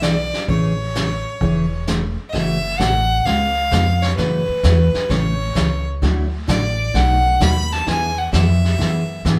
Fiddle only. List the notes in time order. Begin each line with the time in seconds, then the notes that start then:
0.03 D5
0.50 C#5
2.29 D#5
2.33 E5
2.79 F#5
3.25 F5
4.03 C#5
4.17 B4
5.10 C#5
6.49 D5
6.96 F#5
7.42 B5
7.72 A5
7.89 G#5
8.18 F#5
8.33 E5